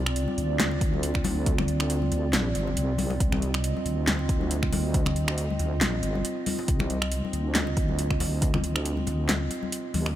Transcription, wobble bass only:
Already playing: C2
0.38 D2
2.12 D2
2.33 A#1
2.55 G1
2.77 C2
2.99 C2
3.20 C2
3.86 D2
5.59 D2
5.81 A#1
6.03 G1
6.68 C2
7.33 D2
9.07 D2
9.94 D#2

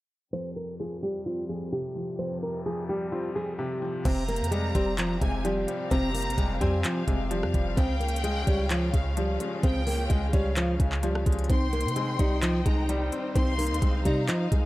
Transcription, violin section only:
4.05 A#5
5.22 G#5
5.91 A#5
6.61 G#5
7.77 G5
8.94 F5
9.64 G5
10.33 F5
11.50 C6
12.66 A#5
13.36 C6
14.05 A#5

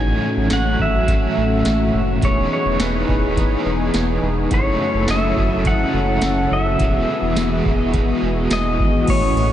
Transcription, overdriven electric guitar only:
Already playing: A2 E3 F#3 A3 C#4 F#4
0.50 F#3 A3 C#4 F#4
1.07 A2 E3 F#3 A3 C#4
1.11 F#4
2.22 E3 B3 D#4 G#4
2.79 E3 B3 D#4 G#4
3.07 B3 D#4 G#4
3.35 E3 B3 D#4
3.39 G#4
4.51 F#2 C#3 E3 A3 C#4 F#4
5.08 E3 A3 C#4 F#4
5.36 E3 A3 C#4 F#4
5.64 F#2 C#3 E3 A3 C#4
5.69 F#4
6.79 E3 G#3 B3 E4 F#4
7.36 G#3 B3 E4 F#4
7.65 B3 E4 F#4
7.92 E3 G#3 B3 E4
7.97 F#4

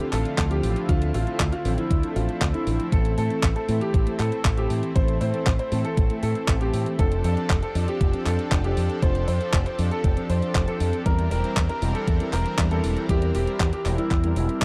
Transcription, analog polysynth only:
0.00 F3 C4 D4 A4
0.51 F3 C4 D4 A4
0.89 F3 C4 D4 A4
1.27 F3 C4 D4 A4
1.65 F3 C4 D4 A4
2.03 F3 C4 D4 A4
2.54 F3 C4 D4 A4
2.92 E3 A3 C4 A4
3.30 E3 A3 C4 A4
3.68 E3 A3 C4 A4
4.07 E3 A3 C4 A4
4.57 E3 A3 C4 A4
4.96 E3 A3 C4 A4
5.34 E3 A3 C4 A4
5.72 E3 A3 C4 A4
6.10 E3 A3 C4 A4
6.61 E3 A3 C4 A4
6.99 F3 C4 D4 A4
7.37 F3 C4 D4 A4
7.75 F3 C4 D4 A4
8.13 F3 C4 D4 A4
8.64 F3 C4 D4 A4
9.02 F3 C4 D4 A4
9.41 F3 C4 D4 A4
9.79 F3 C4 D4 A4
10.17 F3 C4 D4 A4
10.68 F3 C4 D4 A4
11.06 G3 C4 E4 A#4
11.44 G3 C4 E4 A#4
11.82 G3 C4 E4 A#4
12.20 G3 C4 E4 A#4
12.71 G3 C4 E4 A#4
13.09 G3 C4 E4 A#4
13.47 G3 C4 E4 A#4
13.85 G3 C4 E4 A#4
14.24 G3 C4 E4 A#4

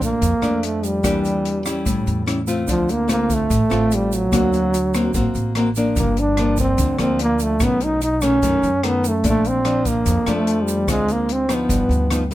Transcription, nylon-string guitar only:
Already playing: A#2 F3 A3 D4
0.22 F2
0.42 F3 A3 D4
1.03 E3 A#3 D4 G4
1.66 G3 C#4 E4
1.85 A2
2.26 G3 C#4 E4
2.47 A3 C4 F4
2.67 D3
3.08 A3 C4 F4
3.50 A2
3.70 A3 C4 F4
4.32 D3 A#3 C4 F#4
4.94 A#3 C4 F#4
5.14 A#3 C4 F#4
5.57 A#3 C4 F#4
5.77 F3 A#3 D4
5.97 G2
6.38 F3 A#3 D4
6.79 D3
6.99 F3 A#3 D4
7.61 B2 D#3 A3 C#4
8.22 D#3 A3 C#4
8.43 F#2 D#3 A3 C#4
8.84 D#3 A3 C#4
9.23 A#2 F3 A3 D4
9.64 F3 D4
10.06 F2
10.27 F3 A3 D4
10.88 D3 G#3 C4 F4
11.49 F3 B3 D#4
11.69 G2
12.11 F3 B3 D#4
12.31 G3

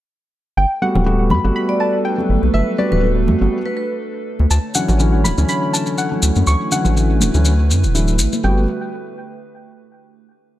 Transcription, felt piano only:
0.82 G3 A3 B3 F#4
1.06 G3 A3 B3 F#4
1.44 G3 A3 B3 F#4
2.18 F#3 G3 A3 B3
2.79 G3 A3 B3 F#4
3.03 G3 A3 B3 F#4
3.41 G3 A3 B3 F#4
4.75 D3 E3 F#3 C#4
5.00 D3 E3 F#3 C#4
5.38 D3 E3 F#3 C#4
6.12 D3 E3 F#3 C#4
6.72 D3 E3 F#3 C#4
6.96 D3 E3 F#3 C#4
7.34 D3 E3 F#3 C#4
7.95 D3 E3 F#3 E4
8.44 G3 A3 B3 F#4

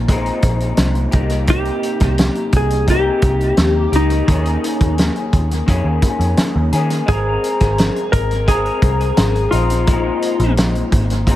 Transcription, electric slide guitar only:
1.50 G4
2.57 G#4
2.90 G4
3.96 D#4
7.09 G#4
8.12 A#4
8.48 G#4
9.51 F4

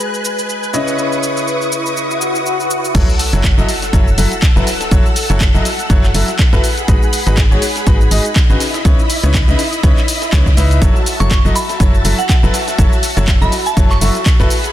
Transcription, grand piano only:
Already playing: G#3 F#4 G#4 B4 D#5
0.73 C#3 E4 B4 C#5 D#5
2.95 F#3 E4 F#4 A4 C#5
3.33 F#3 E4 F#4 A4 C#5
3.58 F#3 E4 F#4 A4 D#5
3.93 F#3 E4 F#4 A4 C#5
4.18 F#3 E4 F#4 A4 E5
4.56 F#3 E4 F#4 A4 B4
4.91 F#3 E4 F#4 A4 C#5
5.30 F#3 E4 F#4 A4 C#5
5.54 F#3 E4 F#4 A4 D#5
5.90 F#3 E4 F#4 A4 C#5
6.15 F#3 E4 F#4 A4 E5
6.53 E4 F#4 A4 B4
6.88 G#3 D#4 F#4 G#4 B4
7.27 G#3 D#4 F#4 G#4 B4
7.51 G#3 D#4 F#4 G#4 C#5
7.87 G#3 D#4 F#4 G#4 B4
8.11 G#3 D#4 F#4 G#4 D#5
8.50 C#3 D#4 F#4 G#4 B4
8.85 C#3 D#4 E4 B4 C#5
9.23 C#3 D#4 E4 B4 C#5
9.48 C#3 D#4 E4 B4 D#5
9.83 C#3 D#4 E4 B4 C#5
10.33 C#3 D#4 E4 B4 C#5
10.57 D#4 E4 B4 E5
10.82 F#3 E4 F#4 A4 C#5
11.20 F#3 E4 F#4 A4 C#5
11.45 F#3 E4 F#4 A4 D#5
11.80 F#3 E4 F#4 A4 C#5
12.05 F#3 E4 F#4 A4 E5
12.43 F#3 E4 F#4 A4 B4
12.79 F#3 E4 F#4 A4 C#5
13.17 F#3 E4 F#4 A4 C#5
13.41 F#3 E4 F#4 A4 D#5
13.77 F#3 E4 F#4 A4 C#5
14.01 F#3 E4 F#4 A4 E5
14.40 E4 F#4 A4 B4

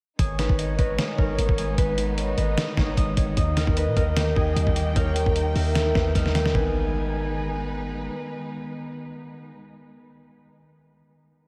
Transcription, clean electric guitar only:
0.19 D#3
0.39 D#4
0.58 D#5
0.79 D#5
0.99 D#3
1.19 D#4
1.39 G#3
1.59 D#3
1.78 D#3
1.98 D#4
2.18 D#5
2.38 D#5
2.57 D#3
2.77 D#4
2.98 G#3
3.18 D#3
3.37 D#3
3.57 D#4
3.77 D#5
3.96 D#5
4.17 D#3
4.36 D#4
4.56 G3
4.76 D#3
4.96 D#3
5.15 G4
5.36 A#4
5.76 D#3
5.95 D#4
6.15 G3
6.35 D#3
6.49 D#3 G#3
6.57 B3
6.61 D#4

